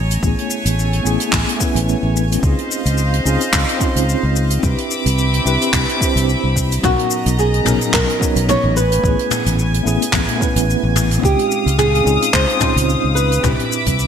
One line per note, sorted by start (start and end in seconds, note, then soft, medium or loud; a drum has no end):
0.00 0.17 A1 medium
0.00 2.40 A3 medium
0.00 2.39 C#5 medium
0.00 2.40 G#5 medium
0.11 closed hi-hat medium
0.11 shaker medium
0.19 0.33 A1 medium
0.19 1.01 A3 medium
0.19 1.01 B3 medium
0.19 1.02 C#4 medium
0.19 kick loud
0.23 1.03 E4 medium
0.23 1.04 G#4 medium
0.23 shaker soft
0.38 closed hi-hat soft
0.50 shaker medium
0.65 0.99 A1 medium
0.65 closed hi-hat medium
0.65 shaker medium
0.79 shaker soft
0.93 closed hi-hat soft
1.03 1.16 A1 medium
1.03 1.55 A3 medium
1.03 1.57 B3 medium
1.03 1.57 C#4 medium
1.03 1.58 E4 medium
1.03 shaker medium
1.07 1.58 G#4 medium
1.20 closed hi-hat medium
1.20 shaker medium
1.32 1.44 A1 medium
1.32 kick loud
1.32 clap medium
1.32 shaker soft
1.49 closed hi-hat medium
1.56 2.38 A3 medium
1.56 2.39 B3 medium
1.56 2.40 C#4 medium
1.56 kick loud
1.56 shaker medium
1.62 2.41 E4 medium
1.62 2.42 B4 medium
1.75 1.94 A1 medium
1.75 closed hi-hat medium
1.75 shaker medium
1.89 shaker soft
2.03 2.37 A1 medium
2.16 shaker medium
2.32 closed hi-hat medium
2.32 shaker medium
2.39 3.20 C4 medium
2.39 3.22 C#4 medium
2.39 3.22 D#4 medium
2.43 2.54 C#2 medium
2.43 3.23 F4 medium
2.43 3.24 G#4 medium
2.43 4.61 C5 medium
2.43 4.61 D#5 medium
2.43 4.61 F5 medium
2.43 kick loud
2.43 shaker soft
2.58 closed hi-hat soft
2.71 shaker medium
2.86 3.19 C#2 medium
2.86 closed hi-hat medium
2.86 shaker medium
2.98 shaker soft
3.13 closed hi-hat medium
3.23 3.36 C#2 medium
3.23 3.76 C4 medium
3.23 3.77 C#4 medium
3.23 3.78 D#4 medium
3.23 3.78 F4 medium
3.23 3.78 G#4 medium
3.23 shaker medium
3.40 closed hi-hat medium
3.40 shaker medium
3.53 3.64 C#2 medium
3.53 kick loud
3.53 clap medium
3.53 shaker medium
3.69 closed hi-hat medium
3.77 4.58 C4 medium
3.77 4.59 C#4 medium
3.77 4.60 D#4 medium
3.77 kick loud
3.77 shaker medium
3.83 4.61 F4 medium
3.83 4.62 C5 medium
3.96 4.14 C#2 medium
3.96 closed hi-hat medium
3.96 shaker medium
4.09 shaker soft
4.23 4.57 C#2 medium
4.36 shaker medium
4.50 closed hi-hat medium
4.50 shaker medium
4.59 4.74 C2 medium
4.59 5.41 C4 medium
4.59 6.81 C4 medium
4.59 5.42 D4 medium
4.59 5.43 E4 medium
4.59 6.81 E5 medium
4.59 6.81 B5 medium
4.59 6.81 D6 medium
4.59 kick loud
4.59 shaker soft
4.65 5.44 G4 medium
4.65 5.45 B4 medium
4.78 closed hi-hat soft
4.91 shaker medium
5.06 5.40 C2 medium
5.06 closed hi-hat medium
5.06 shaker medium
5.18 shaker soft
5.34 closed hi-hat soft
5.44 5.56 C2 medium
5.44 5.96 C4 medium
5.44 5.97 D4 medium
5.44 5.98 E4 medium
5.44 5.98 G4 medium
5.44 5.99 B4 medium
5.44 shaker medium
5.61 closed hi-hat medium
5.61 shaker medium
5.73 5.84 C2 medium
5.73 kick loud
5.73 clap medium
5.73 shaker soft
5.89 closed hi-hat medium
5.97 6.79 C4 medium
5.97 6.80 D4 medium
5.97 6.81 E4 medium
5.97 kick loud
6.02 6.81 G4 medium
6.02 6.83 C5 medium
6.02 shaker medium
6.16 6.34 C2 loud
6.16 closed hi-hat medium
6.16 shaker medium
6.29 shaker soft
6.44 6.77 C2 medium
6.56 kick medium
6.56 shaker medium
6.72 closed hi-hat medium
6.72 shaker medium
6.79 7.61 F#3 medium
6.79 7.62 B3 medium
6.83 6.94 B1 medium
6.83 11.20 B3 medium
6.83 7.63 C#4 medium
6.83 7.64 D#4 medium
6.83 7.39 F#4 medium
6.83 7.65 A#4 medium
6.83 8.74 D#5 medium
6.83 8.74 A#5 medium
6.83 kick loud
6.83 mid tom medium
6.83 shaker soft
6.99 closed hi-hat soft
7.10 shaker medium
7.26 7.60 B1 medium
7.26 closed hi-hat medium
7.26 shaker medium
7.39 7.93 G#4 medium
7.39 shaker soft
7.54 closed hi-hat soft
7.64 7.77 B1 medium
7.64 8.17 F#3 medium
7.64 8.18 B3 medium
7.64 8.18 C#4 medium
7.64 8.18 D#4 medium
7.64 8.19 A#4 loud
7.64 mid tom medium
7.64 shaker medium
7.81 closed hi-hat medium
7.81 shaker medium
7.93 8.04 B1 medium
7.93 8.45 A#4 loud
7.93 kick medium
7.93 clap medium
7.93 shaker soft
8.09 closed hi-hat medium
8.19 8.74 F#3 medium
8.19 8.74 B3 medium
8.19 8.74 C#4 medium
8.19 8.75 D#4 medium
8.19 kick loud
8.19 shaker medium
8.23 8.76 C#5 loud
8.36 8.54 B1 loud
8.36 closed hi-hat medium
8.36 shaker soft
8.48 8.76 C#5 loud
8.48 mid tom medium
8.48 shaker soft
8.64 8.98 A1 medium
8.76 10.37 B4 medium
8.76 11.21 G#5 medium
8.76 shaker medium
8.92 closed hi-hat medium
8.92 shaker soft
8.99 9.81 A3 medium
8.99 9.82 B3 medium
9.03 9.14 A1 medium
9.03 9.83 C#4 medium
9.03 9.84 E4 medium
9.03 9.85 G#4 medium
9.03 kick loud
9.03 shaker soft
9.19 closed hi-hat soft
9.31 mid tom medium
9.31 shaker medium
9.46 9.80 A1 medium
9.46 closed hi-hat medium
9.46 shaker medium
9.59 shaker soft
9.74 closed hi-hat medium
9.83 9.97 A1 medium
9.83 10.35 A3 medium
9.83 10.37 B3 medium
9.83 10.38 C#4 medium
9.83 10.38 E4 medium
9.83 10.39 G#4 medium
9.83 shaker medium
10.02 closed hi-hat medium
10.02 shaker medium
10.13 10.24 A1 medium
10.13 kick loud
10.13 clap medium
10.13 mid tom medium
10.13 shaker soft
10.29 closed hi-hat medium
10.36 11.18 A3 medium
10.36 11.19 B3 medium
10.36 11.20 C#4 medium
10.41 11.21 E4 medium
10.41 11.22 B4 medium
10.41 kick medium
10.41 shaker medium
10.56 10.74 A1 loud
10.56 closed hi-hat medium
10.56 shaker medium
10.70 shaker soft
10.83 11.17 A1 medium
10.95 mid tom medium
10.95 shaker medium
11.11 closed hi-hat medium
11.11 shaker soft
11.19 12.01 C4 medium
11.19 12.02 C#4 medium
11.19 12.03 D#4 medium
11.19 13.41 F5 medium
11.23 11.34 C#2 medium
11.23 12.05 G#3 medium
11.23 12.04 F4 medium
11.23 11.75 G4 medium
11.23 13.41 D#6 medium
11.23 kick loud
11.23 shaker medium
11.39 closed hi-hat soft
11.51 shaker medium
11.66 12.00 C#2 medium
11.66 closed hi-hat medium
11.66 shaker medium
11.79 12.35 G#4 loud
11.79 mid tom medium
11.79 shaker soft
11.95 closed hi-hat soft
12.04 12.17 C#2 medium
12.04 12.56 C4 medium
12.04 12.58 C#4 medium
12.04 12.58 D#4 medium
12.04 12.59 F4 medium
12.04 12.59 G#4 loud
12.04 shaker medium
12.22 closed hi-hat medium
12.22 shaker soft
12.33 12.45 C#2 medium
12.33 13.15 C5 loud
12.33 kick medium
12.33 clap medium
12.33 shaker soft
12.49 closed hi-hat medium
12.57 13.38 C4 medium
12.57 13.40 C#4 medium
12.57 13.41 D#4 medium
12.57 mid tom medium
12.57 shaker medium
12.61 13.42 F4 medium
12.61 13.43 C5 loud
12.61 kick medium
12.76 12.95 C#2 loud
12.76 closed hi-hat medium
12.76 shaker medium
12.89 shaker soft
13.04 13.38 C#2 medium
13.15 14.07 B4 medium
13.15 shaker medium
13.32 closed hi-hat medium
13.32 shaker medium
13.39 14.07 C4 medium
13.39 14.07 D4 medium
13.39 14.07 B5 medium
13.39 14.07 D6 medium
13.39 mid tom medium
13.44 13.55 C2 medium
13.44 14.07 E4 medium
13.44 14.07 G4 medium
13.44 14.07 E5 medium
13.44 kick loud
13.44 shaker soft
13.48 14.07 B4 medium
13.59 closed hi-hat soft
13.72 shaker medium
13.86 14.07 C2 medium
13.86 kick medium
13.86 closed hi-hat medium
13.86 shaker medium
13.99 shaker soft